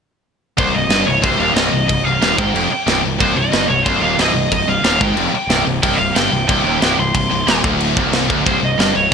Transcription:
0.57 picked electric bass C1, distorted electric guitar C2, lead electric guitar C5, kick, crash
0.73 picked electric bass C1, distorted electric guitar C2, lead electric guitar D#5
0.90 picked electric bass G1, distorted electric guitar G2, snare, crash
1.06 picked electric bass C1, distorted electric guitar C2, lead electric guitar C#5
1.22 picked electric bass C1, distorted electric guitar C2, lead electric guitar C5, kick, crash
1.38 picked electric bass D#1, distorted electric guitar D#2, lead electric guitar F5
1.54 picked electric bass C1, distorted electric guitar C2, lead electric guitar D#5, snare, crash
1.72 picked electric bass C1, distorted electric guitar C2
1.87 picked electric bass C1, distorted electric guitar C2, lead electric guitar D#5, kick, crash
2.04 picked electric bass C1, distorted electric guitar C2, lead electric guitar F5
2.21 picked electric bass D#1, distorted electric guitar D#2, snare, crash
2.38 picked electric bass G#1, distorted electric guitar G#2, lead electric guitar G5, kick
2.54 picked electric bass F1, distorted electric guitar F2, crash
2.69 muted picked electric bass stroke, muted distorted electric guitar stroke
2.87 picked electric bass C1, distorted electric guitar C2, snare, crash
3.03 picked electric bass C1, distorted electric guitar C2
3.18 picked electric bass C1, distorted electric guitar C2, lead electric guitar C5, kick, crash
3.36 picked electric bass C1, distorted electric guitar C2, lead electric guitar D#5
3.52 picked electric bass G1, distorted electric guitar G2, snare, crash
3.68 picked electric bass C1, distorted electric guitar C2, lead electric guitar C#5
3.84 picked electric bass C1, distorted electric guitar C2, lead electric guitar C5, kick, crash
4.00 picked electric bass D#1, distorted electric guitar D#2, lead electric guitar F5
4.18 picked electric bass C1, distorted electric guitar C2, lead electric guitar D#5, snare, crash
4.32 picked electric bass C1, distorted electric guitar C2
4.52 picked electric bass C1, distorted electric guitar C2, lead electric guitar D#5, kick, crash
4.66 picked electric bass C1, distorted electric guitar C2, lead electric guitar F5
4.82 picked electric bass D#1, distorted electric guitar D#2, snare, crash
5.00 picked electric bass G#1, distorted electric guitar G#2, lead electric guitar G5, kick
5.14 picked electric bass F1, distorted electric guitar F2, crash
5.31 muted picked electric bass stroke, muted distorted electric guitar stroke
5.47 picked electric bass C1, distorted electric guitar C2, snare, crash
5.65 picked electric bass C1, distorted electric guitar C2
5.82 picked electric bass C1, distorted electric guitar C2, lead electric guitar G5, kick, crash
5.94 lead electric guitar D#5 F5
5.99 picked electric bass C1, distorted electric guitar C2
6.15 picked electric bass G1, distorted electric guitar G2, lead electric guitar G5, snare, crash
6.31 picked electric bass C1, distorted electric guitar C2
6.47 picked electric bass C1, distorted electric guitar C2, lead electric guitar G5, kick, crash
6.64 picked electric bass D#1, distorted electric guitar D#2
6.80 picked electric bass C1, distorted electric guitar C2, snare, crash
6.97 picked electric bass C1, distorted electric guitar C2, lead electric guitar C6
7.14 picked electric bass C1, distorted electric guitar C2, kick, crash
7.30 picked electric bass C1, distorted electric guitar C2
7.45 picked electric bass D#1, distorted electric guitar D#2, snare, crash
7.63 picked electric bass D1, distorted electric guitar D2, kick
7.80 crash
7.96 picked electric bass C1, distorted electric guitar C2, kick
8.13 snare, crash
8.29 picked electric bass D1, distorted electric guitar D2, kick
8.46 picked electric bass C1, distorted electric guitar C2, lead electric guitar C5, kick, crash
8.61 picked electric bass C1, distorted electric guitar C2
8.65 lead electric guitar D#5
8.78 picked electric bass G1, distorted electric guitar G2, snare, crash
8.94 picked electric bass C1, distorted electric guitar C2, lead electric guitar C#5
9.11 distorted electric guitar C2

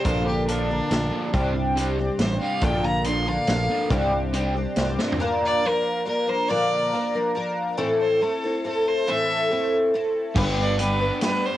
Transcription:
0.05 picked electric bass A#1, twelve-string acoustic guitar A#2 D3 F3 A#3 D4 A4, overdriven electric guitar A#2 D3 F3, fiddle C5, kick, closed hi-hat
0.26 overdriven electric guitar A#2 D3, fiddle G4
0.48 overdriven electric guitar A#2 D3 F3, twelve-string acoustic guitar F3 A#3 D4 A4, fiddle D4, closed hi-hat
0.69 overdriven electric guitar A#2 D3, twelve-string acoustic guitar F3 A#3 D4 A4
0.90 picked electric bass A#1, overdriven electric guitar A#2 D3, twelve-string acoustic guitar F3 A#3 D4 A4, snare, closed hi-hat
1.12 overdriven electric guitar A#2 D3 F3
1.33 picked electric bass C2, overdriven electric guitar C3 G3 C4, twelve-string acoustic guitar C3 G3 C4 D4 G4, kick, closed hi-hat
1.55 overdriven electric guitar C3 G3
1.75 overdriven electric guitar C3 G3 C4, twelve-string acoustic guitar G3 C4, closed hi-hat
1.80 twelve-string acoustic guitar D4 G4
1.99 overdriven electric guitar C3 G3, twelve-string acoustic guitar C4 D4 G4
2.19 picked electric bass A1, overdriven electric guitar C3 G3, twelve-string acoustic guitar G3 C4 D4 G4, fiddle C5, snare, closed hi-hat
2.41 overdriven electric guitar C3 G3 C4, fiddle F5
2.61 picked electric bass A#1, twelve-string acoustic guitar A#2 D3 F3 A#3 D4 A4, overdriven electric guitar A#2 D3 F3, fiddle G5, kick, closed hi-hat
2.84 overdriven electric guitar A#2 D3, fiddle A#5
3.04 overdriven electric guitar A#2 D3 F3, twelve-string acoustic guitar F3 A#3 D4 A4, fiddle C6, closed hi-hat
3.26 overdriven electric guitar A#2 D3, twelve-string acoustic guitar F3 A#3 D4 A4, fiddle F5
3.47 picked electric bass A#1, overdriven electric guitar A#2 D3, twelve-string acoustic guitar F3 A#3 D4 A4, snare, closed hi-hat
3.69 overdriven electric guitar A#2 D3 F3
3.90 picked electric bass C2, overdriven electric guitar C3 G3 C4, twelve-string acoustic guitar C3 G3 C4 D4 G4, kick, closed hi-hat
4.12 overdriven electric guitar C3 G3
4.33 overdriven electric guitar C3 G3 C4, twelve-string acoustic guitar G3 C4 D4 G4, closed hi-hat
4.55 overdriven electric guitar C3 G3, twelve-string acoustic guitar C4 D4 G4
4.76 picked electric bass C2, overdriven electric guitar C3 G3, twelve-string acoustic guitar G3 C4 D4, snare, closed hi-hat
4.80 twelve-string acoustic guitar G4
4.99 overdriven electric guitar C3 G3 C4, twelve-string acoustic guitar C4 D4 G4, snare
5.12 floor tom
5.20 twelve-string acoustic guitar A#2 D3 F3 A#3 D4 A#4
5.46 fiddle D5
5.64 twelve-string acoustic guitar F3 A#3 D4 A#4, fiddle A#4
6.05 twelve-string acoustic guitar F3 A#3 D4 A#4, fiddle A#4
6.26 twelve-string acoustic guitar F3 A#3 D4 A#4, fiddle C5
6.49 twelve-string acoustic guitar A#2 D3 F3 A#3 D4 A#4, fiddle D5
6.92 twelve-string acoustic guitar F3 A#3 D4 A#4
7.15 twelve-string acoustic guitar F3 A#3 D4 A#4
7.35 twelve-string acoustic guitar F3 A#3 D4 A#4
7.77 twelve-string acoustic guitar A2 E3 A3 C4 E4 A4
8.00 fiddle C5
8.22 twelve-string acoustic guitar A3 C4 E4 A4, fiddle A4
8.44 twelve-string acoustic guitar A3 C4 E4 A4
8.64 twelve-string acoustic guitar A3 C4 E4 A4, fiddle A4
8.88 fiddle C5
9.07 twelve-string acoustic guitar A2 E3 A3 C4 E4 A4, fiddle E5
9.51 twelve-string acoustic guitar A3 C4 E4 A4
9.94 twelve-string acoustic guitar A3 C4 E4 A4
10.35 picked electric bass G1, overdriven electric guitar G2 D3 G3 B3 D4 G4, twelve-string acoustic guitar G2 D3 G3 B3 D4 B4, kick, crash
10.57 overdriven electric guitar G3 B3 D4 G4
10.61 fiddle D5
10.78 overdriven electric guitar G3 B3 D4 G4, twelve-string acoustic guitar G3 B3 D4 B4, fiddle B4, closed hi-hat
10.99 overdriven electric guitar G3 B3 D4 G4, twelve-string acoustic guitar G3 B3 D4 B4
11.21 twelve-string acoustic guitar G3 B3 D4 B4, fiddle B4, snare, closed hi-hat
11.45 fiddle C5

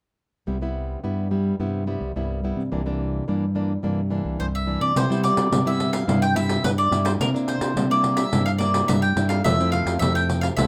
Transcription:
0.47 fingered electric bass C2, nylon-string guitar C3 G3 B3 E4
0.61 nylon-string guitar G3 B3 E4
1.03 nylon-string guitar G2 G3 B3 E4, fingered electric bass G2
1.31 nylon-string guitar G3 B3 E4
1.60 fingered electric bass G2, nylon-string guitar C3 G3 B3 E4
1.87 nylon-string guitar G3 B3 E4
2.01 fingered electric bass C2
2.16 fingered electric bass C2, nylon-string guitar G2 G3 B3 E4
2.44 nylon-string guitar G3 B3 E4
2.56 fingered electric bass C3
2.72 fingered electric bass C2, nylon-string guitar C3 E3 A#3 D4
2.86 nylon-string guitar E3 A#3 D4
3.28 nylon-string guitar G2 E3 A#3 D4, fingered electric bass G2
3.55 nylon-string guitar E3 A#3 D4
3.83 fingered electric bass G2, nylon-string guitar C3 E3 A#3 D4
4.10 nylon-string guitar E3 A#3 D4
4.25 fingered electric bass C2
4.39 fingered electric bass C2, nylon-string guitar G2, mandolin C5
4.55 mandolin E5
4.67 nylon-string guitar E3 A#3 D4
4.81 fingered electric bass C3, mandolin D5
4.95 nylon-string guitar C3 G3 B3 E4, fingered electric bass C3, mandolin C5, pandeiro
5.10 nylon-string guitar G3 B3 E4, pandeiro
5.24 mandolin D5, pandeiro
5.37 fingered electric bass C3, pandeiro
5.51 nylon-string guitar G2 G3 B3 E4, fingered electric bass C3, pandeiro
5.66 nylon-string guitar G3 B3 E4, mandolin E5, pandeiro
5.80 pandeiro
5.93 mandolin F5, pandeiro
6.07 fingered electric bass G2, nylon-string guitar C3 G3 B3 E4, pandeiro
6.22 mandolin G5, pandeiro
6.35 nylon-string guitar G3 B3 E4, mandolin E5, pandeiro
6.49 pandeiro
6.63 nylon-string guitar G2, fingered electric bass G2, mandolin B4, pandeiro
6.78 mandolin D5, pandeiro
6.91 fingered electric bass G2, nylon-string guitar G3 B3 E4, pandeiro
7.05 mandolin C5, pandeiro
7.20 nylon-string guitar C3 A#3 D4 E4, fingered electric bass C3, mandolin A#4, pandeiro
7.34 nylon-string guitar A#3 D4 E4, pandeiro
7.48 mandolin C5, pandeiro
7.61 fingered electric bass C3, pandeiro
7.75 fingered electric bass C3, nylon-string guitar G3 A#3 D4 E4, pandeiro
7.90 nylon-string guitar A#3 D4 E4, mandolin D5, pandeiro
8.04 pandeiro
8.17 mandolin E5, pandeiro
8.32 fingered electric bass G2, nylon-string guitar C3 A#3 D4 E4, pandeiro
8.46 mandolin F5, pandeiro
8.58 nylon-string guitar A#3 D4 E4, mandolin D5, pandeiro
8.74 pandeiro
8.88 fingered electric bass G2, nylon-string guitar G3, mandolin E5, pandeiro
9.02 mandolin G5, pandeiro
9.16 fingered electric bass G2, nylon-string guitar A#3 D4 E4, pandeiro
9.29 mandolin F5, pandeiro
9.44 fingered electric bass F2, nylon-string guitar F3 A3 C4 E4, mandolin E5, pandeiro
9.60 nylon-string guitar A3 C4 E4, pandeiro
9.72 mandolin F5, pandeiro
9.86 fingered electric bass F2, pandeiro
9.99 fingered electric bass F2, nylon-string guitar C3 A3 C4 E4, mandolin E5, pandeiro
10.15 mandolin G5, pandeiro
10.30 pandeiro
10.41 mandolin F5, pandeiro
10.57 fingered electric bass C2, nylon-string guitar F3 A3 C4 E4, mandolin E5, pandeiro

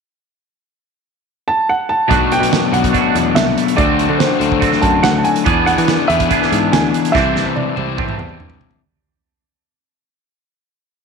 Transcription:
1.48 upright piano A5
1.69 upright piano F#5
1.89 upright piano A5
2.08 picked electric bass B1, clean electric guitar B2 F#3 A3 D4 F#4, overdriven electric guitar B2 F#3 B3 D4, kick, closed hi-hat
2.12 overdriven electric guitar F#4
2.32 upright piano G5, closed hi-hat
2.41 picked electric bass B2, closed hi-hat
2.53 snare, closed hi-hat
2.71 picked electric bass B1, overdriven electric guitar B2 F#3 B3 D4 F#4, upright piano F#5, closed hi-hat
2.84 kick, closed hi-hat
2.92 clean electric guitar B2 F#3 A3 D4 F#4, kick, closed hi-hat
3.15 picked electric bass E2, closed hi-hat
3.35 picked electric bass C2, upright piano E5, snare, closed hi-hat
3.58 closed hi-hat
3.68 closed hi-hat
3.76 picked electric bass D2, clean electric guitar D3 A3 C4, overdriven electric guitar D3 F#3 A3 D4 F#4, upright piano D5, kick, closed hi-hat
3.81 overdriven electric guitar C5
3.99 closed hi-hat
4.09 picked electric bass D3
4.18 upright piano C5, snare, closed hi-hat
4.39 picked electric bass D2, overdriven electric guitar F#3 A3 D4 F#4 C5, closed hi-hat
4.43 overdriven electric guitar D3
4.52 kick
4.60 clean electric guitar D3 A3 C4, kick, closed hi-hat
4.72 snare
4.82 picked electric bass F#2, upright piano A5, kick, closed hi-hat
5.03 picked electric bass D2, upright piano F#5, snare, closed hi-hat
5.18 upright piano A5
5.24 upright piano G#5, closed hi-hat
5.36 closed hi-hat
5.44 picked electric bass E2, clean electric guitar E3 B3 D4 G#4, overdriven electric guitar E3 B3 D4, kick, closed hi-hat
5.48 overdriven electric guitar G#4 B4
5.66 upright piano F#5, closed hi-hat
5.78 picked electric bass E3, closed hi-hat
5.88 snare, closed hi-hat
6.07 picked electric bass E2, overdriven electric guitar E3 B3 D4 G#4 B4, upright piano E5, closed hi-hat
6.20 kick, closed hi-hat
6.29 clean electric guitar E3 B3 D4 G#4, kick, closed hi-hat
6.42 snare
6.52 picked electric bass G#2, closed hi-hat
6.72 picked electric bass D2, upright piano G#5, snare, closed hi-hat
6.94 closed hi-hat
7.05 closed hi-hat
7.12 picked electric bass C2, overdriven electric guitar C3 E3 G3 C4 E4, clean electric guitar C3 E3 C4 D4 G4, upright piano E5, kick, snare
7.16 overdriven electric guitar C5
7.36 snare
7.46 picked electric bass C3
7.56 upright piano D5, high tom
7.76 picked electric bass C2, overdriven electric guitar C3 E3 G3 C4 E4 C5, high tom
7.97 clean electric guitar C3 E3 C4 D4 G4, kick, mid tom
8.09 mid tom
8.18 picked electric bass E2, mid tom
8.29 mid tom
8.39 picked electric bass G2, mid tom
8.50 floor tom
8.61 floor tom
8.71 floor tom

